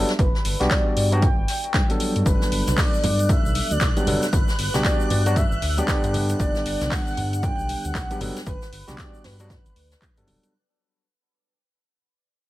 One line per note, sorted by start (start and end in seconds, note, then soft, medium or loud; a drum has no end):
0.00 0.11 F#3 medium
0.00 0.11 G3 medium
0.00 0.12 B3 medium
0.00 0.12 D4 medium
0.00 0.12 A4 medium
0.09 snare medium
0.09 closed hi-hat medium
0.19 0.29 G1 loud
0.19 0.72 B4 medium
0.19 kick loud
0.19 closed hi-hat medium
0.35 snare soft
0.45 0.55 G1 medium
0.45 closed hi-hat medium
0.45 open hi-hat loud
0.60 0.67 B1 medium
0.60 1.08 G3 medium
0.60 1.09 B3 medium
0.60 1.09 D4 medium
0.60 1.08 F#4 medium
0.60 1.09 G4 medium
0.60 snare medium
0.60 closed hi-hat medium
0.70 1.14 D5 loud
0.70 kick loud
0.70 snare loud
0.70 clap loud
0.70 closed hi-hat loud
0.70 closed hi-hat medium
0.96 1.30 G2 medium
0.96 closed hi-hat medium
0.96 open hi-hat loud
1.12 1.26 F#3 medium
1.12 1.27 G3 medium
1.12 1.27 B3 medium
1.12 1.27 D4 medium
1.12 1.27 F#4 loud
1.12 1.90 G5 loud
1.12 closed hi-hat soft
1.22 kick loud
1.22 closed hi-hat medium
1.38 1.45 G1 loud
1.48 snare soft
1.48 closed hi-hat medium
1.48 open hi-hat loud
1.64 closed hi-hat medium
1.74 1.85 G2 medium
1.74 kick loud
1.74 snare loud
1.74 clap loud
1.74 closed hi-hat medium
1.74 closed hi-hat loud
1.89 3.93 F#3 medium
1.89 3.93 G3 medium
1.89 3.93 B3 medium
1.89 3.93 D4 medium
1.89 3.94 A4 medium
1.89 closed hi-hat medium
1.89 closed hi-hat soft
2.00 closed hi-hat medium
2.00 open hi-hat loud
2.16 2.23 G2 medium
2.16 closed hi-hat medium
2.26 2.36 G1 loud
2.26 2.79 B4 loud
2.26 10.55 F#6 medium
2.26 kick loud
2.26 closed hi-hat medium
2.26 shaker medium
2.41 snare medium
2.41 high bongo medium
2.41 shaker soft
2.52 2.62 G1 medium
2.52 closed hi-hat medium
2.52 open hi-hat loud
2.67 2.74 B1 medium
2.67 snare medium
2.67 closed hi-hat medium
2.67 high conga medium
2.67 shaker medium
2.77 3.31 D5 loud
2.77 kick loud
2.77 snare loud
2.77 clap loud
2.77 closed hi-hat medium
2.77 open hi-hat medium
2.77 shaker medium
2.94 shaker soft
3.03 3.37 G2 medium
3.03 closed hi-hat medium
3.03 open hi-hat loud
3.03 low conga medium
3.19 closed hi-hat soft
3.19 shaker medium
3.29 3.73 E5 loud
3.29 kick loud
3.29 closed hi-hat medium
3.29 shaker medium
3.45 3.61 B1 loud
3.45 shaker soft
3.55 closed hi-hat medium
3.55 open hi-hat loud
3.71 3.78 D2 medium
3.71 4.07 D5 loud
3.71 closed hi-hat medium
3.71 shaker medium
3.81 3.92 B1 medium
3.81 kick loud
3.81 snare loud
3.81 clap loud
3.81 closed hi-hat loud
3.81 closed hi-hat medium
3.81 shaker medium
3.96 4.04 F#3 medium
3.96 4.04 G3 medium
3.96 4.05 B3 medium
3.96 4.05 D4 medium
3.96 4.05 G4 medium
3.96 closed hi-hat medium
3.96 high bongo medium
3.96 shaker soft
4.06 4.17 G1 loud
4.06 4.25 F#3 medium
4.06 4.25 G3 medium
4.06 4.25 B3 medium
4.06 4.26 D4 medium
4.06 4.26 A4 medium
4.06 closed hi-hat medium
4.06 open hi-hat loud
4.06 high conga medium
4.06 low conga medium
4.23 snare medium
4.23 closed hi-hat medium
4.23 shaker medium
4.32 4.43 G1 loud
4.32 4.81 B4 medium
4.32 kick loud
4.32 closed hi-hat loud
4.32 closed hi-hat medium
4.32 shaker medium
4.48 snare medium
4.48 high bongo medium
4.48 shaker soft
4.59 4.69 G1 medium
4.59 closed hi-hat medium
4.59 open hi-hat loud
4.74 4.81 B1 medium
4.74 5.22 G3 medium
4.74 5.22 B3 medium
4.74 5.23 D4 medium
4.74 5.22 F#4 medium
4.74 5.23 G4 loud
4.74 snare medium
4.74 closed hi-hat medium
4.74 high conga medium
4.74 shaker medium
4.84 5.38 D5 loud
4.84 kick loud
4.84 snare loud
4.84 clap loud
4.84 closed hi-hat medium
4.84 shaker medium
5.00 shaker soft
5.10 5.44 G2 medium
5.10 closed hi-hat medium
5.10 open hi-hat loud
5.10 low conga medium
5.26 5.40 F#3 medium
5.26 5.40 G3 medium
5.26 5.40 B3 medium
5.26 5.41 D4 medium
5.26 5.41 F#4 loud
5.26 closed hi-hat medium
5.26 shaker medium
5.36 5.79 E5 loud
5.36 kick loud
5.36 closed hi-hat medium
5.36 shaker medium
5.52 5.59 G1 loud
5.52 shaker soft
5.62 5.81 D2 loud
5.62 snare soft
5.62 closed hi-hat medium
5.62 open hi-hat loud
5.77 5.86 F#3 medium
5.77 5.86 G3 medium
5.77 5.86 B3 medium
5.77 5.86 D4 medium
5.77 5.86 G4 loud
5.77 6.14 D5 loud
5.77 closed hi-hat medium
5.77 shaker medium
5.87 8.06 D3 loud
5.87 8.07 G3 medium
5.87 8.07 B3 medium
5.87 8.07 D4 medium
5.87 8.07 G4 loud
5.87 kick loud
5.87 snare loud
5.87 clap loud
5.87 closed hi-hat medium
5.87 shaker medium
6.04 6.34 G2 loud
6.04 closed hi-hat soft
6.04 closed hi-hat medium
6.04 shaker soft
6.14 closed hi-hat medium
6.14 open hi-hat loud
6.14 high conga medium
6.14 low conga medium
6.29 closed hi-hat medium
6.29 high bongo soft
6.29 shaker medium
6.39 6.50 G1 loud
6.39 6.93 D5 medium
6.39 kick loud
6.39 closed hi-hat medium
6.39 shaker medium
6.55 snare medium
6.55 high bongo medium
6.55 shaker soft
6.66 6.76 G1 medium
6.66 closed hi-hat medium
6.66 open hi-hat loud
6.81 6.88 B1 medium
6.81 snare medium
6.81 closed hi-hat medium
6.81 high conga medium
6.81 shaker medium
6.91 7.45 F#5 loud
6.91 kick loud
6.91 snare loud
6.91 clap loud
6.91 closed hi-hat medium
6.91 open hi-hat medium
6.91 shaker medium
7.07 shaker soft
7.17 7.51 G2 medium
7.17 closed hi-hat medium
7.17 open hi-hat loud
7.17 low conga medium
7.33 closed hi-hat medium
7.33 shaker medium
7.43 7.86 G5 loud
7.43 kick loud
7.43 closed hi-hat medium
7.43 shaker medium
7.59 7.74 B1 loud
7.59 shaker soft
7.68 closed hi-hat medium
7.68 open hi-hat loud
7.84 7.92 D2 loud
7.84 8.21 F#5 loud
7.84 closed hi-hat medium
7.84 shaker medium
7.94 8.05 B1 medium
7.94 kick loud
7.94 snare loud
7.94 clap loud
7.94 closed hi-hat medium
7.94 shaker medium
8.10 8.18 F#3 medium
8.10 8.18 G3 medium
8.10 8.18 B3 medium
8.10 8.19 D4 medium
8.10 8.19 G4 medium
8.10 closed hi-hat medium
8.10 high bongo medium
8.10 shaker soft
8.20 8.31 G1 loud
8.20 8.39 F#3 medium
8.20 8.39 G3 medium
8.20 8.39 B3 medium
8.20 8.39 D4 medium
8.20 8.39 A4 medium
8.20 closed hi-hat medium
8.20 open hi-hat loud
8.20 high conga medium
8.20 low conga medium
8.36 snare medium
8.36 closed hi-hat medium
8.36 shaker medium
8.46 8.57 G1 loud
8.46 9.00 B4 loud
8.46 kick loud
8.46 closed hi-hat loud
8.46 closed hi-hat medium
8.46 shaker medium
8.62 snare medium
8.62 high bongo medium
8.62 shaker soft
8.72 8.83 G1 medium
8.72 closed hi-hat medium
8.72 open hi-hat loud
8.88 8.95 B1 medium
8.88 9.36 G3 medium
8.88 9.36 B3 medium
8.88 9.36 D4 medium
8.88 9.36 F#4 medium
8.88 9.36 G4 medium
8.88 snare medium
8.88 closed hi-hat medium
8.88 high conga medium
8.88 shaker medium
8.98 9.26 D5 loud
8.98 kick loud
8.98 snare loud
8.98 clap loud
8.98 closed hi-hat medium
8.98 closed hi-hat loud
8.98 shaker medium
9.14 shaker soft
9.24 9.57 G2 medium
9.24 10.28 B4 loud
9.24 snare loud
9.24 open hi-hat medium
9.24 open hi-hat loud
9.24 low conga medium
9.39 9.54 F#3 medium
9.39 9.54 G3 medium
9.39 9.54 B3 medium
9.39 9.54 D4 medium
9.39 9.54 F#4 loud
9.39 closed hi-hat medium
9.39 shaker medium
9.50 kick loud
9.50 snare loud
9.50 closed hi-hat medium
9.50 shaker medium
9.65 9.73 G1 loud
9.65 closed hi-hat soft
9.65 shaker soft
9.76 9.95 D2 loud
9.76 closed hi-hat medium
9.76 open hi-hat loud
9.92 snare loud
9.92 closed hi-hat medium
9.92 shaker medium
10.02 kick loud
10.02 clap loud
10.02 closed hi-hat medium
10.02 shaker medium
10.17 10.24 G2 loud
10.17 10.52 F#3 medium
10.17 10.52 G3 medium
10.17 10.52 B3 medium
10.17 10.53 D4 medium
10.17 10.53 A4 medium
10.17 closed hi-hat medium
10.17 shaker soft
10.27 10.38 D1 loud
10.27 closed hi-hat medium
10.27 open hi-hat loud
10.27 high conga medium
10.27 low conga medium
10.43 closed hi-hat medium
10.43 high bongo medium
10.43 shaker medium